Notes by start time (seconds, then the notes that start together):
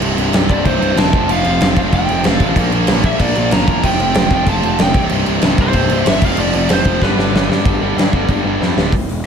0.00 C1 C2 G2 C3, crash
0.16 C1 C2 G2 C3, crash
0.32 C1 C2 G2 C3, snare, crash
0.49 C1 C2 G2 C3 D5, kick, crash
0.65 C1 C2 G2 C3 C5, kick, crash
0.80 C1 C2 G2 C3, crash
0.96 E1 C2 G2 C3 A5, snare, crash
1.13 F1 F2 C3 F3, kick, crash
1.29 F1 F2 C3 F3 F5, crash
1.44 F1 F2 C3 F3, crash
1.61 F1 F2 C3 F3, snare, crash
1.76 F1 F2 C3 F3 F5, kick, crash
1.92 F1 F2 C3 F3 G5, kick, crash
2.09 F1 F2 C3 F3, crash
2.24 F1 F2 C3 F3 F5, snare, crash
2.40 A1 F2 C3 F3, kick, crash
2.56 A#1 A#2 F3 A#3, kick, crash
2.72 A#1 A#2 F3 A#3, crash
2.87 A#1 A#2 F3 A#3, snare, crash
3.04 A#1 A#2 F3 A#3 E5, kick, crash
3.20 A#1 A#2 F3 A#3 D5, kick, crash
3.35 A#1 A#2 F3 A#3, crash
3.51 G1 A#2 F3 A#3 A#5, snare, crash
3.67 E1 A#2 F3 A#3, kick, crash
3.84 F1 F2 C3 F3 G5, kick, crash
3.99 F1 F2 C3 F3, crash
4.14 F1 F2 C3 F3, snare, crash
4.30 F1 F2 C3 F3 G5, kick, crash
4.46 F1 F2 C3 F3 A5, kick, crash
4.63 F1 F2 C3 F3, crash
4.79 F1 F2 C3 F3 G5, snare, crash
4.94 C1 C2 G2 C3, kick, crash
5.09 C1 C2 G2 C3, crash
5.26 C1 C2 G2 C3, crash
5.42 C1 C2 G2 C3, snare, crash
5.58 C1 C2 G2 C3, kick, crash
5.62 C5
5.73 C1 G2 C3, kick, crash
5.77 C2
5.89 C1 C2 G2, crash
5.93 C3
6.06 G1 C2 G2 C3 E5, snare, crash
6.22 F1 F2 C3 F3 F5, kick, crash
6.37 F1 F2 C3 F3 D5, crash
6.53 F1 F2 C3 F3, crash
6.69 F1 F2 C3 F3 C5, snare, crash
6.84 F1 F2 C3 F3, kick, crash
7.02 G1 G2 D3 G3 B4, kick, snare
7.17 G1 G2 D3 G3, snare
7.33 G1 G2 D3 G3, snare
7.49 G2 D3 G3, snare
7.65 G1 G2 D3 G3, kick, crash
7.81 G1 G2 D3 G3
7.97 G2 D3 G3, snare, crash
8.13 G1 G2 D3 G3, kick
8.28 G1 G2 D3 G3, kick, crash
8.44 G1 G2 D3 G3
8.61 F2 G2 D3 G3, snare
8.77 D1 G2 D3 G3, snare
8.92 C1, kick, open hi-hat
9.09 E1, open hi-hat